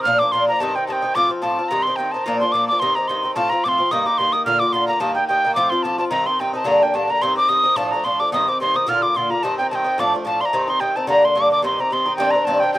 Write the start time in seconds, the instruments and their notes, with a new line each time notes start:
0.03 bouzouki A#2 F3, tin whistle F6
0.07 bouzouki A#3 D4
0.19 bouzouki F3 A#3 D4, tin whistle D6
0.32 bouzouki A#2 F3 A#3 D4, tin whistle C6
0.48 bouzouki F3 A#3 D4, tin whistle A#5
0.60 bouzouki G2 D#3 C4 D#4, tin whistle A5
0.75 bouzouki D#3 C4 D#4, tin whistle G5
0.87 bouzouki G2 D#3 C4 D#4, tin whistle A5
0.92 tin whistle G5
1.02 bouzouki D#3 C4 D#4
1.15 bouzouki A2 F3 C4 F4, tin whistle D6
1.29 bouzouki F3 C4 F4
1.42 bouzouki A2 F3 C4 F4, tin whistle A5
1.59 bouzouki F3 C4 F4
1.69 bouzouki G2 D#3 C4 D#4, tin whistle A#5
1.83 tin whistle C6
1.87 bouzouki D#3 C4 D#4
1.96 bouzouki G2 D#3 C4, tin whistle G5
2.00 bouzouki D#4
2.12 bouzouki C4 D#4, tin whistle A5
2.16 bouzouki D#3
2.24 bouzouki A#2 F3 A#3 D4, tin whistle A#5
2.40 bouzouki F3 A#3 D4, tin whistle C6
2.52 bouzouki A#2 F3 A#3 D4, tin whistle D6
2.68 bouzouki A#3 D4, tin whistle D6
2.72 bouzouki F3
2.79 bouzouki G2 D#3 C4 D#4, tin whistle C6
2.95 bouzouki D#3 C4 D#4, tin whistle A#5
3.08 bouzouki G2 D#3 C4 D#4, tin whistle C6
3.23 bouzouki D#3 C4 D#4
3.35 bouzouki A2 F3 C4 F4, tin whistle A5
3.49 bouzouki F3 C4 F4, tin whistle A#5
3.64 bouzouki A2 F3 C4 F4, tin whistle D6
3.68 tin whistle C6
3.78 bouzouki F3 C4 F4
3.91 bouzouki G2 D#3 A#3 D#4, tin whistle D#6
4.06 bouzouki D#3 A#3 D#4, tin whistle D6
4.18 bouzouki G2 D#3 A#3 D#4, tin whistle C6
4.33 bouzouki D#3 A#3 D#4, tin whistle D#6
4.45 bouzouki A#2 D3 A#3 F4, tin whistle F6
4.59 bouzouki A#3 F4, tin whistle D6
4.64 bouzouki D3
4.72 bouzouki A#2 D3 A#3 F4, tin whistle C6
4.88 bouzouki D3 A#3 F4, tin whistle A#5
5.00 bouzouki G2 D#3 A#3 D#4, tin whistle A5
5.15 bouzouki D#3 A#3 D#4, tin whistle G5
5.28 bouzouki G2 D#3 A#3 D#4, tin whistle G5
5.45 bouzouki D#3 A#3 D#4
5.55 bouzouki A2 F3 C4 F4, tin whistle D6
5.70 bouzouki F3 C4 F4, tin whistle C6
5.83 bouzouki A2 F3 C4 F4, tin whistle A5
5.98 bouzouki F3 C4 F4, tin whistle A5
6.10 bouzouki G2 D#3 C4 D#4, tin whistle A#5
6.26 bouzouki D#3 C4 D#4, tin whistle C6
6.39 bouzouki G2 D#3 C4 D#4, tin whistle G5
6.53 bouzouki D#3 C4 D#4, tin whistle A5
6.64 bouzouki G2 D3 A#3 D4, tin whistle A#5
6.82 bouzouki D3 A#3 D4, tin whistle G5
6.94 bouzouki G2 D3 A#3 D4, tin whistle A5
7.07 bouzouki D3 A#3 D4, tin whistle A#5
7.22 bouzouki G2 D#3 C4 D#4, tin whistle C6
7.36 bouzouki D#3 C4 D#4, tin whistle D6
7.49 bouzouki G2 D#3 C4 D#4, tin whistle D#6
7.64 bouzouki D#3 C4 D#4
7.76 bouzouki A2 F3 A3 D4, tin whistle A5
7.91 bouzouki A3 D4, tin whistle A#5
7.95 bouzouki F3
8.04 bouzouki A2 F3 A3 D4, tin whistle C6
8.20 bouzouki F3 A3 D4, tin whistle D6
8.32 bouzouki G2 D#3 C4 D#4, tin whistle D#6
8.47 bouzouki D#3 C4 D#4, tin whistle D6
8.60 bouzouki G2 D#3 C4 D#4, tin whistle C6
8.74 bouzouki D#3 C4 D#4, tin whistle D#6
8.87 bouzouki A#2 D3 A#3 F4, tin whistle F6
9.02 bouzouki D3 A#3 F4, tin whistle D6
9.15 bouzouki A#2 D3 A#3 F4, tin whistle C6
9.30 bouzouki D3 A#3 F4, tin whistle A#5
9.43 bouzouki G2 D#3 C4 D#4, tin whistle A5
9.58 bouzouki D#3 C4 D#4, tin whistle G5
9.70 bouzouki G2 D#3 C4 D#4, tin whistle A5
9.75 tin whistle G5
9.84 bouzouki D#3 C4 D#4
9.98 bouzouki A2 F3 A3 D4, tin whistle D6
10.14 bouzouki F3 A3 D4
10.25 bouzouki A2 F3 A3 D4, tin whistle A5
10.41 bouzouki F3 A3 D4, tin whistle C6
10.45 tin whistle A#5
10.53 bouzouki G2 D#3 C4 D#4
10.68 bouzouki D#3 C4 D#4, tin whistle C6
10.80 bouzouki G2 D#3 C4 D#4, tin whistle G5
10.96 bouzouki D#3 C4 D#4, tin whistle A5
11.07 bouzouki G2 D3 A#3 D4, tin whistle A#5
11.22 bouzouki D3 A#3 D4, tin whistle C6
11.35 bouzouki G2 D3 A#3 D4, tin whistle D6
11.50 bouzouki D3 A#3 D4, tin whistle D6
11.62 bouzouki G2 D#3 C4 D#4, tin whistle C6
11.78 bouzouki D#3 C4 D#4, tin whistle A#5
11.91 bouzouki G2 D#3 C4 D#4, tin whistle C6
12.06 bouzouki D#3 C4 D#4
12.16 bouzouki G2 D#3 C4 D4, tin whistle G5
12.31 bouzouki D4, tin whistle A#5
12.35 bouzouki D#3 C4
12.45 bouzouki G2 D#3 C4 D4, tin whistle A5
12.60 bouzouki C4 D4, tin whistle G5
12.64 bouzouki D#3
12.74 bouzouki G2 D#3, tin whistle G5